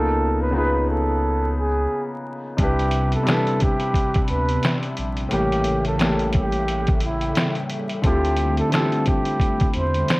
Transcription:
Already playing: sub bass C#2, felt piano C#3 A#3 B3 D#4 F4, flugelhorn A4
0.42 flugelhorn B4
0.51 felt piano C#3 B3 D#4
0.56 felt piano F4 G#4, flugelhorn B4
0.64 felt piano B4
0.90 flugelhorn A4
1.58 flugelhorn G#4
2.57 sub bass C2, felt piano C3 G3 D4, analog synth pad C3 G3 B3 D4 E5, kick, closed hi-hat
2.61 felt piano E4 B4, flugelhorn G4
2.79 closed hi-hat
2.91 closed hi-hat
3.12 flugelhorn A4, closed hi-hat
3.23 felt piano C3 G3 D4, closed hi-hat
3.28 felt piano E4 B4, flugelhorn A4, finger snap, snare
3.47 closed hi-hat
3.60 flugelhorn G4, kick, closed hi-hat
3.80 closed hi-hat
3.94 kick, closed hi-hat
4.14 kick, closed hi-hat
4.28 sub bass D2, flugelhorn B4, closed hi-hat
4.49 closed hi-hat
4.63 finger snap, snare, closed hi-hat
4.83 closed hi-hat
4.97 sub bass A#1, closed hi-hat
5.17 closed hi-hat
5.29 sub bass A1, felt piano A2 E3 A#3, analog synth pad C#3 A#3 A4, closed hi-hat
5.33 felt piano C#4 G4, flugelhorn G4
5.52 closed hi-hat
5.64 closed hi-hat
5.85 flugelhorn A4, closed hi-hat
5.97 felt piano A2 E3 A#3, snare, closed hi-hat
6.01 felt piano C#4 G4, flugelhorn A4, finger snap
6.19 closed hi-hat
6.33 flugelhorn G4, kick, closed hi-hat
6.52 closed hi-hat
6.68 closed hi-hat
6.87 kick, closed hi-hat
7.00 closed hi-hat
7.05 flugelhorn E4
7.21 closed hi-hat
7.35 finger snap, snare, closed hi-hat
7.55 closed hi-hat
7.69 closed hi-hat
7.89 closed hi-hat
8.02 sub bass D2, felt piano D3 A3 C4, analog synth pad D3 A3 C4, kick, closed hi-hat
8.06 felt piano E4 F4 G4, flugelhorn G4
8.25 closed hi-hat
8.37 closed hi-hat
8.58 flugelhorn A4, closed hi-hat
8.69 felt piano D3 A3 C4, closed hi-hat
8.74 felt piano E4 F4 G4, flugelhorn A4, finger snap, snare
8.92 closed hi-hat
9.06 flugelhorn G4, kick, closed hi-hat
9.25 closed hi-hat
9.40 kick, closed hi-hat
9.60 kick, closed hi-hat
9.74 sub bass E2, flugelhorn C5, closed hi-hat
9.94 closed hi-hat
10.08 finger snap, snare, closed hi-hat

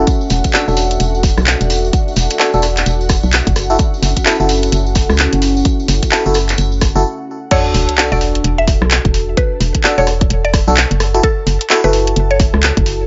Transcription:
Already playing: ambient pad A4 E5 F#5
0.07 ambient pad D4 F#4 F#5, kick, closed hi-hat, tambourine
0.21 tambourine
0.30 fm bass E1, open hi-hat, tambourine
0.44 kick, closed hi-hat, tambourine
0.53 fm electric piano D4 F#4 A4, clap, tambourine
0.68 fm bass E1, fm electric piano D4 F#4 A4, tambourine
0.77 open hi-hat, tambourine
0.91 closed hi-hat, tambourine
1.00 fm bass E1, closed hi-hat, tambourine
1.15 tambourine
1.23 kick, open hi-hat, tambourine
1.38 fm bass B1, cross-stick, tambourine
1.47 clap, closed hi-hat, tambourine
1.60 fm bass E1, closed hi-hat, tambourine
1.70 open hi-hat, tambourine
1.85 tambourine
1.93 kick, closed hi-hat, tambourine
2.08 tambourine
2.16 fm bass E1, open hi-hat, tambourine
2.30 closed hi-hat, tambourine
2.40 fm electric piano D4 F#4 A4, clap, tambourine
2.54 fm bass E1, fm electric piano D4 F#4 A4, tambourine
2.62 cross-stick, open hi-hat, tambourine
2.77 clap, closed hi-hat, tambourine
2.86 fm bass E1, closed hi-hat, tambourine
3.01 tambourine
3.09 kick, cross-stick, open hi-hat, tambourine
3.23 fm bass B1, tambourine
3.33 clap, closed hi-hat, tambourine
3.47 fm bass F#1, kick, closed hi-hat, tambourine
3.56 ambient pad C#4, cross-stick, open hi-hat, tambourine
3.70 fm electric piano E4 F#4 A4, tambourine
3.79 kick, closed hi-hat, tambourine
3.94 tambourine
4.02 fm bass F#1, open hi-hat, tambourine
4.16 kick, closed hi-hat, tambourine
4.26 fm electric piano E4 F#4 A4, clap, tambourine
4.40 fm bass F#1, fm electric piano E4 F#4 A4, tambourine
4.49 open hi-hat, tambourine
4.63 closed hi-hat, tambourine
4.72 fm bass F#1, closed hi-hat, tambourine
4.86 tambourine
4.95 kick, open hi-hat, tambourine
5.09 fm bass C#2, cross-stick, tambourine
5.19 clap, closed hi-hat, tambourine
5.33 fm bass F#1, closed hi-hat, tambourine
5.42 open hi-hat, tambourine
5.57 tambourine
5.65 kick, closed hi-hat, tambourine
5.80 tambourine
5.88 fm bass F#1, open hi-hat, tambourine
6.02 kick, closed hi-hat, tambourine
6.12 fm electric piano E4 F#4 A4, clap, tambourine
6.26 fm bass F#1, fm electric piano E4 F#4 A4, tambourine
6.34 cross-stick, open hi-hat, tambourine
6.49 clap, closed hi-hat, tambourine
6.58 fm bass F#1, closed hi-hat, tambourine
6.72 tambourine
6.81 kick, cross-stick, open hi-hat, tambourine
6.95 fm bass F#1, fm electric piano E4 F#4 A4, tambourine
7.51 fm electric piano D4 F#4 A4, ambient pad A4 A5, synth pluck C#5, kick, closed hi-hat, crash, sub drop
7.74 fm bass E1, open hi-hat
7.89 closed hi-hat
7.98 fm electric piano D4 F#4 A4, clap
8.12 fm bass E1, fm electric piano D4 F#4 A4, synth pluck D5
8.21 open hi-hat
8.35 closed hi-hat
8.44 fm bass E1, closed hi-hat
8.58 synth pluck E5
8.68 kick, open hi-hat
8.82 fm bass B1, cross-stick
8.91 clap, closed hi-hat
9.05 fm bass E1, kick, closed hi-hat
9.14 open hi-hat
9.37 synth pluck B4, kick, closed hi-hat
9.60 fm bass E1, open hi-hat
9.75 kick, closed hi-hat
9.84 fm electric piano D4 F#4 A4, clap
9.98 fm bass E1, fm electric piano D4 F#4 A4, synth pluck C#5
10.07 cross-stick, open hi-hat
10.21 kick, closed hi-hat
10.30 fm bass E1, closed hi-hat
10.45 synth pluck D5
10.54 kick, cross-stick, open hi-hat
10.68 fm bass B1, fm electric piano D4 F#4 A4
10.77 clap, closed hi-hat
10.91 fm bass F#1, closed hi-hat
11.00 cross-stick, open hi-hat
11.14 fm electric piano E4 F#4 A4, closed hi-hat
11.23 synth pluck A4, kick, closed hi-hat
11.47 fm bass F#1, open hi-hat
11.61 closed hi-hat
11.70 fm electric piano E4 F#4 A4, clap
11.84 fm bass F#1, fm electric piano E4 F#4 A4, synth pluck B4
11.93 open hi-hat
12.07 closed hi-hat
12.16 fm bass F#1, closed hi-hat
12.31 synth pluck C#5
12.40 kick, open hi-hat
12.54 fm bass C#2, cross-stick
12.63 clap, closed hi-hat
12.77 fm bass F#1, kick, closed hi-hat
12.86 open hi-hat

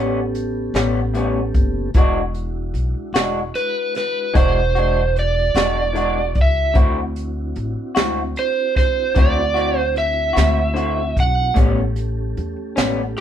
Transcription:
Already playing: upright bass A1, clean electric guitar B3 C#4, tonewheel organ B3 C#4 G4 A4
0.00 clean electric guitar G3
0.35 closed hi-hat
0.74 upright bass A1, clean electric guitar G3 B3 C#4, snare, closed hi-hat
1.14 clean electric guitar A2 G3 B3 C#4, closed hi-hat
1.54 upright bass F#1, kick, closed hi-hat
1.94 upright bass E1, clean electric guitar E3 G#3 D4 F#4, tonewheel organ G#3 D4 E4 F#4, kick, closed hi-hat
2.34 closed hi-hat
2.74 upright bass B1, closed hi-hat
3.13 upright bass E1, clean electric guitar D4 F#4, snare, closed hi-hat
3.17 clean electric guitar G#3
3.55 electric slide guitar B4, closed hi-hat
3.95 electric slide guitar B4, snare, closed hi-hat
4.34 upright bass E1, clean electric guitar E3 G#3 D4 F#4, electric slide guitar C5, kick, closed hi-hat
4.75 clean electric guitar G#3 D4 F#4, closed hi-hat
5.16 electric slide guitar D5, closed hi-hat
5.55 upright bass E1, clean electric guitar G#3 D4 F#4, snare, closed hi-hat
5.93 clean electric guitar E3 G#3 D4 F#4, closed hi-hat
6.35 upright bass C#2, kick, closed hi-hat
6.41 electric slide guitar E5
6.74 upright bass D2, clean electric guitar D3 C4 E4 F#4, tonewheel organ C4 D4 E4 F#4, kick, closed hi-hat
7.16 closed hi-hat
7.56 upright bass A1, closed hi-hat
7.95 upright bass D2, clean electric guitar C4 E4 F#4, snare, closed hi-hat
8.36 electric slide guitar C5, closed hi-hat
8.76 electric slide guitar C5, kick, snare, closed hi-hat
9.15 upright bass D2, clean electric guitar D3 C4 E4 F#4, kick, closed hi-hat
9.19 electric slide guitar D5
9.54 clean electric guitar C4 E4 F#4, closed hi-hat
9.78 electric slide guitar C5
9.96 electric slide guitar E5, closed hi-hat
10.33 upright bass D2, clean electric guitar C4 E4 F#4, closed hi-hat
10.37 snare
10.74 clean electric guitar D3 C4 E4 F#4, closed hi-hat
11.17 upright bass B1, electric slide guitar F#5, kick, closed hi-hat
11.54 upright bass A1, clean electric guitar A2 G3 B3 C#4, tonewheel organ A3 C#4 G4 A4, kick, closed hi-hat
11.96 closed hi-hat
12.37 upright bass E2, closed hi-hat
12.76 upright bass A1, clean electric guitar G3 B3 C#4, snare, closed hi-hat
13.17 closed hi-hat

